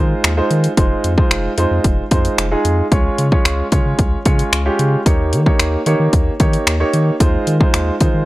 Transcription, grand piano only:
0.00 0.30 G#3 medium
0.00 0.30 D#4 medium
0.00 0.30 F4 medium
0.00 0.30 C5 medium
0.37 0.70 G#3 medium
0.37 0.70 D#4 medium
0.37 0.71 F4 medium
0.37 0.71 C5 medium
0.77 1.11 G#3 medium
0.77 1.11 D#4 medium
0.77 1.11 F4 medium
0.77 1.11 C5 medium
1.17 1.51 G#3 medium
1.17 1.51 D#4 medium
1.17 1.51 F4 medium
1.17 1.51 C5 medium
1.57 2.02 G#3 medium
1.57 2.02 D#4 medium
1.57 2.02 F4 medium
1.57 2.02 C5 medium
2.11 2.44 G#3 medium
2.11 2.45 D#4 medium
2.11 2.45 F4 medium
2.11 2.45 C5 medium
2.51 2.85 G#3 medium
2.51 2.85 D#4 medium
2.51 2.85 F4 medium
2.51 2.85 G#4 medium
2.91 3.25 G#3 medium
2.91 3.25 C#4 medium
2.91 3.25 F4 medium
2.91 3.25 C#5 medium
3.32 3.65 G#3 medium
3.32 3.65 C#4 medium
3.32 3.65 F4 medium
3.32 3.65 C#5 medium
3.72 4.16 G#3 medium
3.72 4.16 C#4 medium
3.72 4.16 F4 medium
3.72 4.17 C#5 medium
4.25 4.59 G#3 medium
4.25 4.59 C#4 medium
4.25 4.59 F4 medium
4.25 4.59 C#5 medium
4.66 4.99 G#3 medium
4.66 4.99 C#4 medium
4.66 4.99 F4 medium
4.66 4.99 G4 medium
5.06 5.39 A#3 medium
5.06 5.39 D#4 medium
5.06 5.39 G4 medium
5.06 5.39 C#5 medium
5.46 5.79 A#3 medium
5.46 5.79 D#4 medium
5.46 5.79 G4 medium
5.46 5.80 C#5 medium
5.86 6.31 A#3 medium
5.86 6.31 D#4 medium
5.86 6.31 G4 medium
5.86 6.31 C#5 medium
6.40 6.73 A#3 medium
6.40 6.73 D#4 medium
6.40 6.73 G4 medium
6.40 6.73 C#5 loud
6.80 7.13 A#3 medium
6.80 7.13 D#4 medium
6.80 7.13 G4 medium
6.80 7.13 C#5 medium
7.20 7.53 G#3 medium
7.20 7.54 D#4 medium
7.20 7.54 F4 medium
7.20 7.54 C5 medium
7.60 7.94 G#3 medium
7.60 7.94 D#4 medium
7.60 7.94 F4 medium
7.60 7.94 C5 medium
8.00 8.25 G#3 medium
8.00 8.25 D#4 medium
8.00 8.25 F4 medium
8.00 8.25 C5 medium

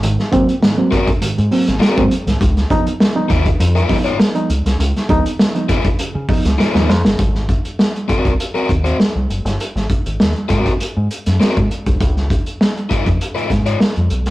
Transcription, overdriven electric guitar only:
0.91 1.08 C4 medium
0.91 1.08 F#4 medium
0.91 1.08 A#4 medium
1.79 2.01 C4 medium
1.79 2.01 F#4 medium
1.79 2.02 A#4 medium
3.29 3.46 D#4 medium
3.29 3.46 F4 medium
3.29 3.46 B4 medium
3.75 3.96 D#4 medium
3.75 3.95 F4 medium
3.75 3.95 B4 medium
4.04 4.17 D#4 soft
4.04 4.17 F4 medium
4.04 4.16 C#5 medium
5.69 5.85 D#4 medium
5.69 5.85 F4 medium
5.69 5.85 B4 medium
6.58 6.72 D#4 medium
6.58 6.72 F4 medium
6.58 6.72 B4 medium
6.73 6.89 D#4 medium
6.73 6.89 F4 medium
6.73 6.89 B4 medium
8.08 8.30 C4 medium
8.08 8.30 F#4 medium
8.08 8.30 A#4 medium
8.54 8.70 C4 medium
8.54 8.70 F#4 medium
8.54 8.69 A#4 medium
8.84 8.97 C4 soft
8.84 8.96 F#4 medium
8.84 8.96 C5 medium
10.49 10.70 C4 medium
10.49 10.70 F#4 medium
10.49 10.70 A#4 medium
11.40 11.56 C4 medium
11.40 11.57 F#4 medium
11.40 11.57 A#4 medium
12.90 13.06 D#4 medium
12.90 13.06 F4 medium
12.90 13.07 B4 medium
13.35 13.51 D#4 medium
13.35 13.50 F4 medium
13.35 13.50 B4 medium
13.66 13.78 D#4 soft
13.66 13.78 F4 medium
13.66 13.78 C#5 medium

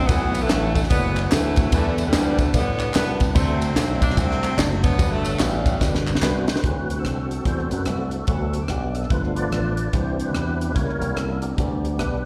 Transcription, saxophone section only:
0.07 0.43 E3 medium
0.07 0.43 F#3 medium
0.07 0.41 B3 loud
0.41 0.90 E3 medium
0.41 0.91 F#3 medium
0.41 0.73 A3 loud
0.74 0.81 A3 medium
0.89 1.32 E3 medium
0.89 1.32 F#3 medium
0.89 1.28 B3 loud
1.31 1.71 E3 medium
1.31 1.71 F#3 medium
1.31 1.71 A3 medium
1.72 2.08 D3 medium
1.72 2.03 A3 medium
2.06 2.85 B2 medium
2.06 2.55 D3 medium
2.06 2.39 G3 medium
2.38 2.54 A3 medium
2.53 2.95 D3 medium
2.53 2.95 G3 medium
2.53 2.93 B3 medium
2.94 3.34 D3 medium
2.94 3.34 G3 medium
2.94 3.26 B3 medium
3.35 4.14 F#3 medium
3.35 3.69 A3 medium
3.35 4.14 C4 medium
4.01 4.16 D4 medium
4.17 4.83 F#3 medium
4.17 4.96 A3 medium
4.17 4.58 C4 medium
4.83 5.11 D3 medium
4.83 5.12 F#3 medium
4.83 5.10 B3 loud
5.11 5.40 D3 medium
5.11 5.91 F#3 medium
5.11 5.40 A3 medium
5.40 6.19 B2 medium
5.40 6.19 D3 medium
5.40 6.07 G3 medium

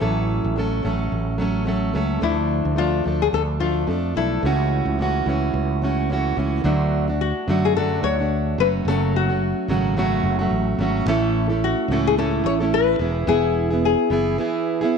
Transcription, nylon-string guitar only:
0.00 1.92 A4 medium
2.23 2.78 E4 medium
2.78 3.22 F4 medium
3.22 3.27 G#4 medium
3.34 3.41 A4 loud
3.60 4.16 F4 medium
4.17 6.06 E4 medium
7.21 7.65 F#4 medium
7.65 7.76 G#4 medium
7.76 8.03 A4 medium
8.04 8.60 C#5 medium
8.60 8.67 B4 medium
8.88 9.15 A4 medium
9.16 9.66 F#4 medium
11.64 12.07 F#4 medium
12.07 12.18 G#4 medium
12.18 12.45 A4 medium
12.46 12.53 C#5 medium
12.74 13.28 B4 medium
13.28 13.84 G#4 medium
13.85 14.36 G#4 medium

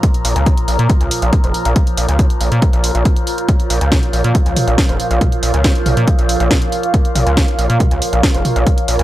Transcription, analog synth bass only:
0.25 0.34 A#1 loud
0.36 0.53 C#2 medium
0.68 0.77 A#1 medium
0.79 0.88 A#2 loud
1.01 1.09 C#2 medium
1.22 1.31 A#1 medium
1.44 1.52 F1 medium
1.65 1.74 A#1 loud
1.98 2.07 A#1 medium
2.09 2.26 C#2 medium
2.41 2.50 A#1 medium
2.52 2.60 A#2 loud
2.73 2.91 A#1 medium
2.95 3.03 A#1 medium
3.70 3.79 A#1 loud
3.81 3.99 C#2 medium
4.13 4.22 A#1 medium
4.24 4.33 A#2 loud
4.46 4.55 C#2 medium
4.68 4.76 A#1 medium
4.89 4.98 F1 medium
5.11 5.19 A#1 medium
5.43 5.52 A#1 loud
5.54 5.71 C#2 medium
5.86 5.95 A#1 medium
5.97 6.06 A#2 loud
6.19 6.36 A#1 medium
6.40 6.49 A#1 medium
7.15 7.24 A#1 loud
7.27 7.44 C#2 medium
7.59 7.68 A#1 medium
7.70 7.78 A#2 loud
7.91 8.00 C#2 medium
8.13 8.21 A#1 medium
8.35 8.43 F1 medium
8.56 8.65 A#1 medium
8.88 8.97 A#1 loud
8.99 9.03 C#2 medium

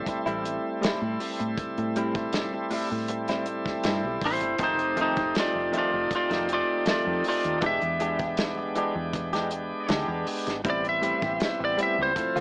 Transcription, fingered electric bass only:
0.26 0.57 A1 medium
1.02 1.16 A2 medium
1.40 1.55 A2 medium
1.78 2.70 A2 medium
2.92 3.67 A2 medium
3.85 4.01 G2 medium
4.04 4.21 B1 medium
4.22 4.40 A1 medium
4.42 4.58 G1 medium
4.59 5.06 F1 medium
5.17 5.32 F1 medium
5.55 5.70 F1 medium
5.93 6.08 F1 medium
6.30 6.61 F1 medium
7.07 7.21 F2 medium
7.45 7.59 D#2 medium
7.62 7.78 E1 loud
7.82 8.74 E2 medium
8.95 9.72 E2 medium
9.90 10.06 D2 medium
10.08 10.23 E2 medium
10.47 10.62 G#1 medium
10.65 11.12 A1 medium
11.22 11.37 A1 loud
11.60 11.75 A1 medium
11.98 12.13 C#2 medium
12.36 12.40 D2 medium

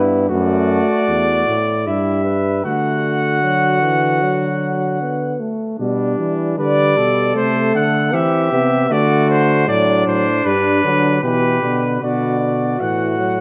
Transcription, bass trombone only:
0.00 0.29 G2 medium
0.31 0.80 F#2 medium
1.08 1.44 E2 medium
1.47 1.88 A2 medium
1.86 2.64 G2 medium
2.65 5.36 D3 medium
5.80 6.16 B2 medium
6.18 6.60 E3 medium
6.58 6.96 D3 medium
6.97 7.37 B2 medium
7.36 7.74 C3 medium
7.74 8.13 D3 medium
8.13 8.51 E3 medium
8.52 8.90 C3 medium
8.90 9.66 D3 medium
9.67 10.06 A2 medium
10.07 10.44 A2 medium
10.45 10.83 G2 medium
10.84 11.22 D3 medium
11.23 11.61 B2 medium
11.62 12.01 B2 medium
12.01 12.76 B2 medium
12.80 13.41 A2 medium

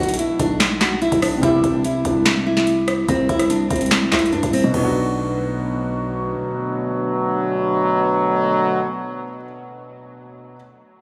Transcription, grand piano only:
0.00 1.36 B2 medium
0.00 1.38 B3 medium
0.00 1.40 D4 medium
0.00 1.41 F#4 medium
1.38 4.68 C3 medium
1.38 4.69 C4 medium
1.45 4.71 E4 medium
1.45 4.73 G4 medium
4.64 9.23 B2 medium
4.71 9.29 B3 medium
4.77 9.36 D4 medium
4.84 9.43 F#4 medium

